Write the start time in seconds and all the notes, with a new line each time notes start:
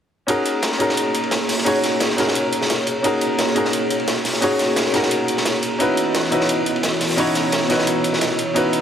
0.27 A#3 C#4 D#4 F#4 G#4 A#4 C#5, closed hi-hat, ride
0.45 closed hi-hat, ride
0.63 snare, closed hi-hat, ride
0.72 snare
0.78 C#4 D#4 F#4 G#4 A#4, closed hi-hat, ride
0.89 snare
0.97 closed hi-hat, ride
1.15 closed hi-hat, ride
1.24 ride
1.31 snare, closed hi-hat, ride
1.49 snare, closed hi-hat, open hi-hat
1.58 snare
1.64 C#4 D#4 F#4 G#4 C#5, closed hi-hat, ride
1.75 ride
1.84 snare, closed hi-hat, ride
2.00 snare, closed hi-hat, ride
2.10 snare
2.16 C#4 D#4 F#4 G#4 A#4, snare, closed hi-hat, ride
2.27 snare
2.35 closed hi-hat, ride
2.53 closed hi-hat, ride
2.61 snare
2.70 snare, closed hi-hat, ride
2.87 closed hi-hat, ride
3.03 C#4 D#4 F#4 G#4 A#4, closed hi-hat, ride
3.21 closed hi-hat, ride
3.38 snare, closed hi-hat, ride
3.48 snare
3.54 C#4 D#4 F#4 G#4 A#4, closed hi-hat, ride
3.65 snare
3.73 closed hi-hat, ride
3.90 closed hi-hat, ride
4.00 ride
4.08 snare, closed hi-hat, ride
4.25 snare, closed hi-hat, open hi-hat
4.33 snare
4.41 C#4 D#4 F#4 G#4 C#5, closed hi-hat, ride
4.50 ride
4.59 snare, closed hi-hat, ride
4.76 snare, closed hi-hat, ride
4.86 snare
4.92 C#4 D#4 F#4 G#4 A#4, snare, closed hi-hat, ride
5.03 snare
5.11 closed hi-hat, ride
5.28 closed hi-hat, ride
5.37 snare
5.45 snare, closed hi-hat, ride
5.63 closed hi-hat, ride
5.78 E3 B3 C#4 D#4 E4 F#4 B4 C#5 D#5, closed hi-hat, ride
5.97 closed hi-hat, ride
6.15 snare, closed hi-hat, ride
6.24 snare
6.30 C#4 D#4 E4 F#4 B4, closed hi-hat, ride
6.41 snare
6.49 closed hi-hat, ride
6.66 closed hi-hat, ride
6.76 ride
6.83 snare, closed hi-hat, ride
7.00 snare, closed hi-hat, open hi-hat
7.10 snare
7.16 C#4 D#4 E4 F#4 C#5, closed hi-hat, ride
7.27 ride
7.35 snare, closed hi-hat, ride
7.52 snare, closed hi-hat, ride
7.61 snare
7.68 C#4 D#4 E4 F#4 B4, snare, closed hi-hat, ride
7.78 snare
7.87 closed hi-hat, ride
8.04 closed hi-hat, ride
8.13 snare
8.21 snare, closed hi-hat, ride
8.39 closed hi-hat, ride
8.54 C#4 D#4 E4 F#4 B4, closed hi-hat, ride
8.73 closed hi-hat, ride